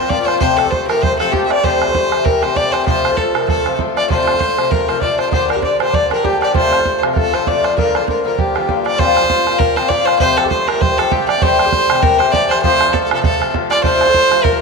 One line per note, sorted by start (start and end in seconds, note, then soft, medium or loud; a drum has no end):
0.00 0.10 F4 medium
0.00 0.64 A#4 medium
0.00 0.11 C5 loud
0.00 0.13 C5 medium
0.00 0.27 C5 medium
0.09 0.40 A#2 medium
0.09 0.40 F3 medium
0.09 0.41 C4 medium
0.09 0.41 F4 medium
0.09 0.22 D5 loud
0.09 1.50 D5 medium
0.09 0.30 D5 medium
0.09 bodhran medium
0.22 0.39 C5 loud
0.22 0.27 D5 medium
0.27 0.40 C5 medium
0.27 0.41 C5 loud
0.27 bodhran medium
0.39 0.65 C3 medium
0.39 0.65 F3 medium
0.39 0.64 A3 medium
0.39 0.63 G4 medium
0.39 0.58 C5 loud
0.39 0.71 C5 loud
0.39 0.60 C5 medium
0.39 bodhran medium
0.57 0.72 A4 medium
0.57 0.95 A4 medium
0.57 0.73 A4 medium
0.57 bodhran medium
0.64 0.88 F3 soft
0.64 0.89 A3 soft
0.64 0.89 G4 soft
0.64 bodhran soft
0.70 0.87 C5 medium
0.70 1.01 C5 medium
0.70 0.90 C5 medium
0.70 bodhran medium
0.87 1.18 C3 medium
0.87 1.19 F3 medium
0.87 1.20 A3 medium
0.87 1.20 G4 medium
0.87 1.04 A#4 medium
0.87 1.26 A#4 medium
0.87 bodhran medium
1.02 1.63 C5 loud
1.02 1.18 C5 loud
1.02 1.18 C5 medium
1.02 bodhran medium
1.18 1.32 C3 medium
1.18 1.32 F3 medium
1.18 1.33 A3 medium
1.18 1.34 G4 medium
1.18 1.34 A4 medium
1.18 2.31 A4 medium
1.18 bodhran soft
1.32 1.62 C3 medium
1.32 1.64 F3 medium
1.32 1.64 A3 medium
1.32 1.45 G4 medium
1.32 1.49 G4 medium
1.32 3.68 G4 medium
1.32 1.64 G4 medium
1.32 bodhran medium
1.46 1.63 D5 medium
1.46 1.53 E5 medium
1.50 2.55 D5 medium
1.50 1.65 D5 loud
1.50 bodhran medium
1.63 1.88 C3 medium
1.63 1.88 E3 medium
1.63 1.87 A3 medium
1.63 1.86 G4 medium
1.63 2.41 C5 loud
1.63 2.27 C5 medium
1.63 2.26 C5 loud
1.63 bodhran medium
1.81 bodhran medium
1.87 2.11 E3 soft
1.87 2.12 A3 medium
1.87 2.12 G4 soft
1.87 bodhran soft
1.95 bodhran medium
2.11 2.41 C3 medium
2.11 2.41 E3 medium
2.11 2.43 A3 medium
2.11 2.43 G4 medium
2.11 bodhran medium
2.25 2.44 A#4 medium
2.25 3.23 A#4 medium
2.25 2.44 A#4 medium
2.25 bodhran medium
2.42 2.54 C3 medium
2.42 2.54 E3 medium
2.42 2.55 A3 medium
2.42 2.55 G4 medium
2.42 2.73 C5 medium
2.42 2.58 C5 loud
2.42 2.55 C5 medium
2.42 bodhran medium
2.55 2.85 C3 medium
2.55 2.86 E3 medium
2.55 2.86 A3 medium
2.55 2.87 G4 medium
2.55 3.96 D5 medium
2.55 2.75 D5 medium
2.55 2.74 D5 loud
2.55 bodhran medium
2.72 2.85 C5 loud
2.72 2.86 C5 medium
2.72 2.87 C5 medium
2.72 bodhran soft
2.86 3.10 C3 medium
2.86 3.11 F3 medium
2.86 3.10 A3 medium
2.86 3.09 F4 medium
2.86 3.18 C5 loud
2.86 4.09 C5 loud
2.86 3.16 C5 loud
2.86 bodhran medium
3.05 bodhran medium
3.10 3.34 F3 soft
3.10 3.35 A3 soft
3.10 3.35 F4 soft
3.10 bodhran soft
3.17 3.40 A4 medium
3.17 3.47 A4 medium
3.17 3.34 A4 medium
3.17 bodhran medium
3.34 3.64 C3 medium
3.34 3.65 F3 medium
3.34 3.66 A3 medium
3.34 3.66 F4 medium
3.34 3.54 A#4 medium
3.34 3.50 A#4 medium
3.34 bodhran medium
3.48 4.77 A4 medium
3.48 3.77 A4 medium
3.48 3.66 A4 medium
3.48 bodhran medium
3.65 3.78 C3 medium
3.65 3.79 F3 medium
3.65 3.79 A3 medium
3.65 3.79 F4 medium
3.65 3.79 C5 medium
3.65 bodhran medium
3.79 4.09 C3 medium
3.79 4.09 F3 medium
3.79 4.10 A3 medium
3.79 4.10 F4 medium
3.79 bodhran medium
3.96 4.11 D5 medium
3.96 5.01 D5 medium
3.96 4.09 D5 loud
3.96 bodhran medium
4.10 4.34 C3 medium
4.10 4.34 F3 medium
4.10 4.34 A3 medium
4.10 4.32 F4 medium
4.10 4.72 C5 loud
4.10 4.36 C5 medium
4.10 4.88 C5 medium
4.10 bodhran medium
4.27 bodhran medium
4.34 4.57 F3 soft
4.34 4.58 A3 soft
4.34 4.58 F4 soft
4.34 bodhran soft
4.40 bodhran medium
4.57 4.87 C3 medium
4.57 4.88 F3 medium
4.57 4.88 A3 medium
4.57 4.89 F4 medium
4.57 4.72 C5 medium
4.57 bodhran medium
4.71 4.90 A#4 medium
4.71 5.49 A#4 medium
4.71 5.03 A#4 medium
4.71 bodhran medium
4.88 5.00 C3 medium
4.88 5.01 F3 medium
4.88 5.01 A3 medium
4.88 5.02 F4 medium
4.88 5.18 C5 medium
4.88 5.01 C5 medium
4.88 bodhran soft
5.01 5.31 C3 medium
5.01 5.32 F3 medium
5.01 5.32 A3 medium
5.01 5.33 F4 medium
5.01 5.18 D5 medium
5.01 5.20 D5 medium
5.01 5.63 D5 medium
5.01 bodhran medium
5.19 5.31 C5 medium
5.19 5.32 C5 medium
5.19 bodhran medium
5.32 5.56 A#2 medium
5.32 5.56 D3 medium
5.32 5.56 D4 medium
5.32 5.55 G4 medium
5.32 5.80 C5 loud
5.32 5.48 C5 loud
5.32 5.49 C5 medium
5.32 bodhran medium
5.49 6.11 A#4 medium
5.49 5.62 A#4 medium
5.49 bodhran medium
5.56 5.80 D3 soft
5.56 5.80 D4 soft
5.56 5.80 G4 medium
5.56 bodhran soft
5.62 5.93 D5 medium
5.62 5.79 D5 medium
5.62 bodhran medium
5.80 6.09 A#2 medium
5.80 6.10 D3 medium
5.80 6.11 D4 medium
5.80 6.11 G4 medium
5.80 5.95 C5 loud
5.80 6.53 C5 medium
5.80 5.96 C5 medium
5.80 bodhran medium
5.93 6.10 D5 loud
5.93 6.42 D5 medium
5.93 6.11 D5 medium
5.93 bodhran medium
6.10 6.22 A#2 medium
6.10 6.23 D3 medium
6.10 6.24 D4 medium
6.10 6.24 G4 medium
6.10 6.26 A#4 medium
6.10 7.22 A#4 medium
6.10 6.27 A#4 medium
6.10 bodhran medium
6.23 6.53 A#2 medium
6.23 6.54 D3 medium
6.23 6.54 D4 medium
6.23 6.41 G4 medium
6.23 8.37 G4 medium
6.23 6.42 G4 loud
6.23 6.55 G4 medium
6.23 bodhran medium
6.41 6.54 D5 medium
6.41 7.46 D5 medium
6.41 6.54 D5 medium
6.41 bodhran medium
6.54 6.78 C3 medium
6.54 6.78 F3 medium
6.54 6.78 A3 loud
6.54 6.77 F4 medium
6.54 7.33 C5 loud
6.54 6.99 C5 medium
6.54 7.00 C5 loud
6.54 bodhran medium
6.73 bodhran medium
6.78 7.02 F3 soft
6.78 7.02 A3 soft
6.78 7.02 F4 medium
6.78 bodhran soft
6.86 bodhran medium
7.02 7.32 C3 medium
7.02 7.34 F3 medium
7.02 7.34 A3 medium
7.02 7.35 F4 medium
7.02 bodhran medium
7.13 7.84 A4 medium
7.13 7.19 A#4 medium
7.13 bodhran medium
7.17 7.36 A4 loud
7.17 7.35 A4 medium
7.33 7.45 C3 medium
7.33 7.46 F3 medium
7.33 7.47 A3 medium
7.33 7.47 F4 medium
7.33 7.63 C5 medium
7.33 7.47 C5 medium
7.33 7.49 C5 medium
7.33 bodhran medium
7.47 7.77 C3 medium
7.47 7.77 F3 medium
7.47 7.78 A3 medium
7.47 7.78 F4 medium
7.47 8.85 D5 medium
7.47 7.66 D5 medium
7.47 7.79 D5 medium
7.47 bodhran medium
7.64 7.94 C5 medium
7.64 7.77 C5 medium
7.64 bodhran medium
7.77 8.01 G2 medium
7.77 8.01 D3 medium
7.77 8.00 A#3 medium
7.77 7.99 F4 medium
7.77 7.97 A#4 medium
7.77 8.08 A#4 medium
7.77 7.97 A#4 medium
7.77 bodhran medium
7.95 8.98 C5 medium
7.95 8.08 C5 medium
7.95 bodhran medium
8.01 8.24 D3 soft
8.01 8.25 A#3 soft
8.01 8.25 F4 medium
8.08 8.24 A#4 medium
8.08 8.25 A#4 medium
8.08 8.24 A#4 medium
8.08 bodhran medium
8.24 8.54 G2 medium
8.24 8.54 D3 medium
8.24 8.55 A#3 medium
8.24 8.56 F4 medium
8.24 9.59 A#4 medium
8.24 8.38 A#4 medium
8.24 8.40 A#4 medium
8.38 10.73 G4 medium
8.38 8.85 G4 medium
8.38 8.83 G4 medium
8.38 bodhran medium
8.55 8.67 G2 medium
8.55 8.67 D3 medium
8.55 8.68 A#3 medium
8.55 8.69 F4 medium
8.55 bodhran medium
8.68 8.98 G2 medium
8.68 8.99 D3 medium
8.68 8.99 A#3 medium
8.68 9.00 F4 medium
8.68 bodhran medium
8.86 9.89 D5 medium
8.86 9.00 D5 loud
8.86 bodhran medium
8.98 9.23 A#2 medium
8.98 9.23 F3 medium
8.98 9.22 C4 medium
8.98 9.21 F4 medium
8.98 9.60 C5 loud
8.98 9.76 C5 loud
8.98 bodhran medium
9.17 bodhran medium
9.22 9.46 F3 soft
9.22 9.46 C4 soft
9.22 9.46 F4 medium
9.22 bodhran soft
9.30 bodhran medium
9.46 9.76 A#2 medium
9.46 9.77 F3 medium
9.46 9.78 C4 medium
9.46 9.78 F4 medium
9.46 bodhran medium
9.59 9.78 A#4 loud
9.59 10.43 A#4 medium
9.59 bodhran medium
9.76 9.89 A#2 medium
9.76 9.89 F3 medium
9.76 9.90 C4 medium
9.76 9.91 F4 medium
9.76 9.90 C5 loud
9.76 10.06 C5 medium
9.76 bodhran medium
9.89 10.20 A#2 medium
9.89 10.20 F3 medium
9.89 10.21 C4 medium
9.89 10.21 F4 medium
9.89 10.07 D5 loud
9.89 11.28 D5 medium
9.89 bodhran medium
10.05 10.18 C5 loud
10.05 10.20 C5 medium
10.05 bodhran medium
10.19 10.44 C3 medium
10.19 10.45 F3 medium
10.19 10.44 A3 medium
10.19 10.43 G4 loud
10.19 10.39 C5 loud
10.19 10.50 C5 loud
10.19 bodhran medium
10.37 10.74 A4 medium
10.37 10.49 A4 loud
10.37 bodhran medium
10.44 10.67 F3 soft
10.44 10.67 A3 medium
10.44 10.68 G4 medium
10.44 bodhran soft
10.50 10.69 C5 medium
10.50 10.80 C5 loud
10.50 bodhran medium
10.67 10.97 C3 medium
10.67 10.98 F3 medium
10.67 10.99 A3 medium
10.67 10.99 G4 medium
10.67 10.82 A#4 medium
10.67 11.04 A#4 medium
10.67 bodhran medium
10.81 11.42 C5 medium
10.81 10.99 C5 loud
10.81 bodhran medium
10.98 11.10 C3 medium
10.98 11.11 F3 medium
10.98 11.11 A3 medium
10.98 11.12 G4 medium
10.98 12.08 A4 medium
10.98 11.13 A4 medium
10.98 bodhran medium
11.11 11.41 C3 medium
11.11 11.42 F3 medium
11.11 11.43 A3 medium
11.11 13.46 G4 medium
11.11 11.27 G4 medium
11.11 11.42 G4 medium
11.11 bodhran medium
11.28 11.44 D5 loud
11.28 12.33 D5 loud
11.28 bodhran medium
11.42 11.66 C3 medium
11.42 11.66 E3 medium
11.42 11.65 A3 medium
11.42 11.64 G4 loud
11.42 12.19 C5 loud
11.42 12.04 C5 loud
11.42 bodhran medium
11.59 bodhran medium
11.65 11.89 E3 soft
11.65 11.90 A3 soft
11.65 11.90 G4 medium
11.65 bodhran soft
11.72 bodhran medium
11.89 12.19 C3 medium
11.89 12.19 E3 medium
11.89 12.21 A3 medium
11.89 12.20 G4 medium
11.89 bodhran medium
12.02 12.99 A#4 medium
12.02 12.20 A#4 loud
12.02 bodhran loud
12.19 12.32 C3 medium
12.19 12.32 E3 medium
12.19 12.33 A3 medium
12.19 12.33 G4 medium
12.19 12.30 C5 loud
12.19 12.50 C5 medium
12.19 bodhran medium
12.30 12.62 C3 medium
12.30 12.64 E3 medium
12.30 12.33 C5 medium
12.30 12.48 D5 loud
12.30 13.70 D5 medium
12.30 bodhran medium
12.34 12.64 A3 medium
12.34 12.64 G4 medium
12.49 12.61 C5 loud
12.49 12.63 C5 medium
12.49 bodhran medium
12.62 12.87 C3 medium
12.62 12.87 F3 medium
12.62 12.87 A3 medium
12.62 12.85 F4 medium
12.62 12.94 C5 loud
12.62 13.83 C5 loud
12.62 bodhran medium
12.81 bodhran medium
12.87 13.10 F3 soft
12.87 13.10 A3 soft
12.87 13.11 F4 medium
12.87 bodhran soft
12.93 13.03 A4 medium
12.93 13.13 A4 medium
12.93 bodhran medium
13.04 13.13 A4 medium
13.10 13.39 C3 medium
13.10 13.40 F3 medium
13.10 13.40 A3 medium
13.10 13.41 F4 medium
13.10 13.23 A4 medium
13.10 13.22 A4 medium
13.10 bodhran medium
13.23 13.52 A4 medium
13.23 14.50 A4 medium
13.23 bodhran loud
13.40 13.52 C3 medium
13.40 13.53 F3 medium
13.40 13.54 A3 medium
13.40 13.54 F4 medium
13.40 bodhran medium
13.54 13.83 C3 medium
13.54 13.83 F3 medium
13.54 13.84 A3 medium
13.54 13.84 F4 medium
13.54 bodhran medium
13.70 13.82 D5 loud
13.70 14.61 D5 medium
13.70 bodhran medium
13.83 14.08 C3 medium
13.83 14.08 F3 medium
13.83 14.08 A3 medium
13.83 14.06 F4 loud
13.83 14.46 C5 loud
13.83 14.61 C5 loud
13.83 14.41 C5 loud
13.83 bodhran medium
14.01 bodhran medium
14.07 14.31 F3 soft
14.07 14.31 A3 soft
14.07 14.32 F4 medium
14.07 bodhran soft
14.14 bodhran medium
14.31 14.60 C3 medium
14.31 14.61 F3 medium
14.31 14.61 A3 medium
14.31 14.61 F4 medium
14.31 bodhran medium
14.44 14.61 A#4 loud
14.44 14.61 A#4 medium
14.44 14.61 A#4 loud
14.44 bodhran medium